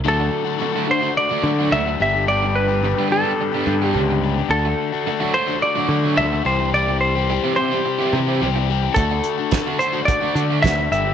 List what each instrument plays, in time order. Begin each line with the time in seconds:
0.04 picked electric bass D2, overdriven electric guitar D3 F#3 A3 D4 F#4
0.08 clean electric guitar A4
0.20 muted overdriven electric guitar stroke
0.44 overdriven electric guitar A3 D4 F#4
0.58 overdriven electric guitar D3 F#3 A3 D4 F#4, muted overdriven electric guitar stroke
0.72 overdriven electric guitar A3 D4 F#4
0.77 overdriven electric guitar A3
0.88 overdriven electric guitar A3 D4 F#4, clean electric guitar C5, muted overdriven electric guitar stroke
1.01 overdriven electric guitar A3 D4 F#4
1.17 clean electric guitar D5, muted overdriven electric guitar stroke
1.29 overdriven electric guitar A3 D4 F#4
1.43 picked electric bass D3, overdriven electric guitar F#3 A3 D4 F#4
1.59 overdriven electric guitar A3 D4 F#4
1.72 picked electric bass D2, overdriven electric guitar D3 F#3 A3 D4 F#4, clean electric guitar E5
1.85 overdriven electric guitar A3 D4 F#4, muted overdriven electric guitar stroke
1.99 picked electric bass G1, overdriven electric guitar G2 D3 G3 B3 D4 G4, clean electric guitar E5
2.13 overdriven electric guitar G3 B3 D4 G4
2.27 overdriven electric guitar G2 D3 G3 B3 D4 G4, clean electric guitar D5
2.42 muted overdriven electric guitar stroke
2.55 clean electric guitar B4
2.68 overdriven electric guitar G3 B3 D4 G4
2.82 overdriven electric guitar G2 D3 G3 B3 D4 G4, muted overdriven electric guitar stroke
2.96 overdriven electric guitar G3 B3 D4 G4
3.00 overdriven electric guitar B3
3.11 overdriven electric guitar B3 D4 G4, clean electric guitar A4, muted overdriven electric guitar stroke
3.24 overdriven electric guitar G3 B3 D4 G4
3.41 muted overdriven electric guitar stroke
3.52 overdriven electric guitar G3 B3 D4 G4
3.56 overdriven electric guitar B3
3.66 picked electric bass G2, overdriven electric guitar G3 B3 D4 G4
3.82 overdriven electric guitar B3 D4 G4
3.86 clean electric guitar G4
3.93 picked electric bass C#2, overdriven electric guitar G2 D3 G3 B3 D4 G4
4.08 overdriven electric guitar G3 B3 D4 G4, muted overdriven electric guitar stroke
4.23 overdriven electric guitar G3 B3 D4 G4
4.36 overdriven electric guitar G3 B3 D4 G4
4.49 picked electric bass D2, overdriven electric guitar D3 A3 D4 F#4, clean electric guitar A4
4.65 muted overdriven electric guitar stroke
4.92 overdriven electric guitar A3 D4 F#4
5.06 overdriven electric guitar D3 A3 D4 F#4, muted overdriven electric guitar stroke
5.20 overdriven electric guitar F#3 A3 D4 F#4
5.33 overdriven electric guitar F#3 A3 D4 F#4, clean electric guitar C5, muted overdriven electric guitar stroke
5.47 overdriven electric guitar A3 D4 F#4
5.62 clean electric guitar D5, muted overdriven electric guitar stroke
5.75 overdriven electric guitar F#3 A3 D4 F#4
5.89 picked electric bass D3, overdriven electric guitar D3 A3 D4 F#4
6.04 overdriven electric guitar F#3 A3 D4 F#4
6.16 picked electric bass D2, overdriven electric guitar D3 A3 D4 F#4, clean electric guitar E5
6.30 overdriven electric guitar A3 D4 F#4, muted overdriven electric guitar stroke
6.44 picked electric bass C2, overdriven electric guitar C3 E3 G3 C4 G4, clean electric guitar C5
6.59 overdriven electric guitar G3 C4 G4
6.73 overdriven electric guitar C3 E3 G3 C4 G4, clean electric guitar D5
6.88 muted overdriven electric guitar stroke
7.01 clean electric guitar C5
7.15 overdriven electric guitar G3 C4 G4
7.29 overdriven electric guitar C3 E3 G3 C4 G4, muted overdriven electric guitar stroke
7.44 overdriven electric guitar E3 G3 C4 E4 G4
7.56 overdriven electric guitar E3 C4 E4 G4, clean electric guitar C5, muted overdriven electric guitar stroke
7.71 overdriven electric guitar G3 C4 G4
7.85 muted overdriven electric guitar stroke
7.99 overdriven electric guitar E3 G3 C4 E4 G4
8.13 picked electric bass C3, overdriven electric guitar E3 G3 C4 G4
8.27 overdriven electric guitar E3 C4 E4 G4
8.41 picked electric bass C2, overdriven electric guitar C3 E3 G3 C4 G4
8.55 overdriven electric guitar G3 C4 G4, muted overdriven electric guitar stroke
8.69 overdriven electric guitar E3 G3 C4 G4
8.83 overdriven electric guitar G3 C4 G4
8.94 picked electric bass D2, overdriven electric guitar D3 A3 D4, clean electric guitar A4, kick, closed hi-hat
8.99 overdriven electric guitar F#4
9.11 muted overdriven electric guitar stroke
9.24 closed hi-hat
9.38 overdriven electric guitar A3 D4 F#4
9.51 overdriven electric guitar D3 A3 D4 F#4, muted overdriven electric guitar stroke, kick, snare, closed hi-hat
9.66 overdriven electric guitar A3 D4 F#4
9.79 overdriven electric guitar A3 D4 F#4, clean electric guitar C5, muted overdriven electric guitar stroke, closed hi-hat
9.93 overdriven electric guitar A3 D4 F#4
10.05 clean electric guitar D5, muted overdriven electric guitar stroke, kick, closed hi-hat
10.20 overdriven electric guitar A3 D4 F#4
10.35 overdriven electric guitar D3 A3 D4 F#4, picked electric bass D3, closed hi-hat
10.50 overdriven electric guitar A3 D4 F#4
10.62 picked electric bass D2, overdriven electric guitar D3 A3 D4 F#4, clean electric guitar E5, kick, snare, closed hi-hat
10.77 overdriven electric guitar A3 D4 F#4, muted overdriven electric guitar stroke
10.91 picked electric bass G1, overdriven electric guitar G2 D3 G3 B3 D4 G4, clean electric guitar E5, closed hi-hat
11.04 overdriven electric guitar G3 B3 D4 G4